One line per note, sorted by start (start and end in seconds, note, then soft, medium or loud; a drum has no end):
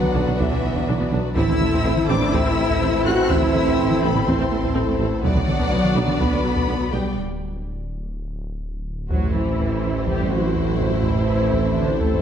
0.00 1.38 B1 medium
0.00 1.19 D3 medium
0.00 0.38 F#3 medium
0.00 0.39 F#3 loud
0.00 1.36 F#3 medium
0.00 1.19 B3 medium
0.00 1.36 B3 medium
0.00 1.36 D4 medium
0.00 1.32 F#4 medium
0.00 1.32 B4 medium
0.00 1.36 D5 medium
0.00 0.37 F#5 loud
0.00 taiko mid medium
0.14 0.20 B1 medium
0.14 0.20 B1 loud
0.14 0.19 D4 medium
0.27 0.32 B1 medium
0.27 0.32 D4 medium
0.27 taiko mid medium
0.39 0.44 B1 medium
0.39 0.45 B1 loud
0.39 1.10 E3 medium
0.39 1.12 E3 medium
0.39 0.44 D4 medium
0.39 1.12 E5 loud
0.39 taiko medium
0.51 0.56 B1 medium
0.51 0.57 D4 medium
0.63 0.68 B1 medium
0.63 0.69 B1 medium
0.63 0.69 B3 medium
0.76 0.81 B1 loud
0.76 0.81 D4 medium
0.76 taiko medium
0.88 0.93 B1 medium
0.88 0.93 D4 medium
1.00 1.05 B1 medium
1.00 1.05 B3 medium
1.12 1.17 B1 loud
1.12 1.17 D4 loud
1.36 1.41 A1 loud
1.36 5.25 A1 medium
1.36 1.41 A1 loud
1.36 5.19 E3 loud
1.36 5.23 A3 loud
1.36 5.19 C4 loud
1.36 5.24 C4 medium
1.36 1.41 C4 medium
1.36 2.05 E4 medium
1.36 5.23 E4 medium
1.36 2.05 E4 loud
1.36 5.23 E4 medium
1.36 5.19 A4 medium
1.36 5.23 C5 medium
1.36 5.24 C5 loud
1.36 2.05 E6 loud
1.36 taiko loud
1.48 1.53 A1 medium
1.48 1.54 C4 medium
1.48 taiko mid medium
1.60 1.65 A1 medium
1.60 1.66 A3 medium
1.60 taiko mid medium
1.73 1.77 A1 loud
1.73 1.78 C4 loud
1.73 taiko medium
1.85 1.90 A1 medium
1.85 1.90 C4 medium
1.97 taiko mid medium
2.09 2.14 A1 medium
2.09 2.14 A1 loud
2.09 2.14 C4 loud
2.09 2.33 D4 loud
2.09 2.33 D6 loud
2.21 2.26 A1 medium
2.21 2.27 C4 medium
2.21 taiko mid medium
2.32 2.38 A1 medium
2.32 2.38 A1 loud
2.32 2.39 C4 loud
2.32 3.06 E4 loud
2.32 3.05 E6 loud
2.32 taiko medium
2.45 2.50 A1 medium
2.45 2.51 C4 medium
2.57 2.62 A1 medium
2.57 2.63 A1 medium
2.57 2.63 A3 medium
2.69 2.74 A1 loud
2.69 2.75 C4 medium
2.69 taiko medium
2.81 2.86 A1 medium
2.81 2.87 C4 medium
2.93 2.98 A1 medium
2.93 2.99 A3 medium
3.06 3.10 A1 loud
3.06 3.11 A1 medium
3.06 3.11 C4 loud
3.06 3.30 F#4 loud
3.06 3.30 F#4 medium
3.06 3.30 F#6 loud
3.30 3.35 A1 medium
3.30 3.35 C4 medium
3.30 4.01 E4 loud
3.30 4.03 E4 loud
3.30 4.03 E6 loud
3.30 taiko loud
3.42 3.47 A1 medium
3.42 3.47 C4 medium
3.42 taiko mid medium
3.54 3.59 A1 medium
3.54 3.59 A3 medium
3.54 taiko mid medium
3.66 3.71 A1 medium
3.66 3.71 C4 medium
3.66 taiko medium
3.78 3.83 A1 medium
3.78 3.84 C4 medium
3.91 taiko mid medium
4.02 4.08 A1 loud
4.02 4.26 B3 medium
4.02 4.27 B3 loud
4.02 4.07 C4 medium
4.02 4.27 B5 loud
4.15 4.20 A1 medium
4.15 4.20 C4 medium
4.15 taiko mid medium
4.27 4.32 A1 loud
4.27 4.98 C4 medium
4.27 4.32 C4 loud
4.27 4.98 C4 medium
4.27 4.99 C6 loud
4.27 taiko medium
4.39 4.44 A1 medium
4.39 4.44 C4 medium
4.51 4.56 A1 medium
4.51 4.56 A3 medium
4.63 4.68 A1 loud
4.63 4.68 C4 loud
4.63 taiko medium
4.74 4.80 A1 medium
4.74 4.79 C4 medium
4.87 4.92 A1 medium
4.87 4.92 A3 medium
4.99 5.04 A1 loud
4.99 5.04 A1 medium
4.99 5.04 C4 medium
5.22 5.28 B1 medium
5.22 7.18 B1 medium
5.22 5.29 B1 loud
5.22 7.13 D3 medium
5.22 6.16 F#3 medium
5.22 6.16 F#3 loud
5.22 7.17 F#3 medium
5.22 5.28 B3 medium
5.22 7.13 B3 medium
5.22 7.17 B3 medium
5.22 7.17 D4 medium
5.22 7.17 D4 loud
5.22 7.17 F#4 medium
5.22 7.17 D5 medium
5.22 7.13 D5 loud
5.22 6.16 F#5 loud
5.22 taiko loud
5.35 5.40 B1 medium
5.35 5.40 B3 medium
5.35 taiko mid medium
5.47 5.53 B1 medium
5.47 5.52 F#3 medium
5.47 taiko mid medium
5.59 5.65 B1 medium
5.59 5.64 B3 medium
5.59 taiko medium
5.71 5.77 B1 medium
5.71 5.76 B3 medium
5.84 taiko mid medium
5.96 6.01 B1 loud
5.96 6.01 B1 medium
5.96 6.01 B3 medium
6.08 6.13 B1 medium
6.08 6.13 B3 medium
6.08 taiko mid medium
6.20 6.25 B1 medium
6.20 6.26 B1 medium
6.20 6.92 B3 medium
6.20 6.25 B3 medium
6.20 6.92 B3 medium
6.20 6.92 B5 loud
6.20 taiko medium
6.32 6.37 B1 medium
6.32 6.37 B3 medium
6.44 6.49 B1 medium
6.44 6.50 B1 medium
6.44 6.49 F#3 medium
6.56 6.61 B1 medium
6.56 6.61 B3 medium
6.56 taiko medium
6.68 6.73 B1 medium
6.68 6.74 B1 medium
6.68 6.73 B3 medium
6.81 6.86 B1 medium
6.81 6.85 F#3 medium
6.92 6.98 B1 medium
6.92 7.17 G3 medium
6.92 6.97 B3 medium
6.92 7.17 G5 medium
7.17 9.10 D1 medium
9.10 12.22 A1 medium
9.10 12.22 E3 medium
9.10 9.33 F#3 medium
9.10 12.22 A3 medium
9.10 12.22 C4 medium
9.10 12.22 E4 medium
9.10 9.33 F#4 medium
9.10 12.22 C5 medium
9.10 taiko loud
9.23 taiko low medium
9.35 10.08 E3 medium
9.35 10.06 E4 medium
9.59 taiko medium
10.07 10.32 G3 medium
10.07 10.31 G4 medium
10.07 taiko medium
10.20 taiko low medium
10.31 11.04 F#3 medium
10.31 11.04 F#4 medium
10.56 taiko medium
10.80 taiko low medium
11.04 11.77 E3 medium
11.04 11.77 E4 medium
11.04 taiko loud
11.16 taiko low soft
11.53 taiko medium
11.77 12.01 D3 medium
11.77 12.01 D4 medium
12.01 12.22 A3 medium
12.01 12.22 A4 medium
12.01 taiko medium
12.14 taiko low medium